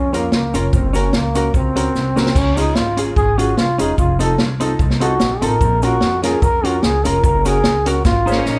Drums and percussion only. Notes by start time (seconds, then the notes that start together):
0.14 closed hi-hat, cabasa
0.32 snare, cabasa
0.54 closed hi-hat, cabasa
0.73 kick, cabasa
0.94 closed hi-hat, cabasa
1.13 snare, cabasa
1.35 closed hi-hat, cabasa
1.54 kick, cabasa
1.76 closed hi-hat, cabasa
1.95 snare, cabasa
2.17 snare, cabasa
2.26 snare
2.35 kick, crash, cabasa
2.57 closed hi-hat, cabasa
2.75 snare, cabasa
2.97 closed hi-hat, cabasa
3.16 kick, cabasa
3.39 closed hi-hat, cabasa
3.57 snare, cabasa
3.79 closed hi-hat, cabasa
3.98 kick, cabasa
4.20 closed hi-hat, cabasa
4.38 snare, cabasa
4.60 closed hi-hat, cabasa
4.79 kick, cabasa
4.90 snare
5.01 closed hi-hat, cabasa
5.20 snare, cabasa
5.42 closed hi-hat, cabasa
5.61 kick, cabasa
5.82 closed hi-hat, cabasa
6.01 snare, cabasa
6.23 snare, closed hi-hat, cabasa
6.42 kick, cabasa
6.64 closed hi-hat, cabasa
6.83 snare, cabasa
7.05 closed hi-hat, cabasa
7.24 kick, cabasa
7.45 closed hi-hat, cabasa
7.64 snare, cabasa
7.86 closed hi-hat, cabasa
8.05 kick, snare, cabasa
8.28 cabasa
8.32 snare
8.46 snare, cabasa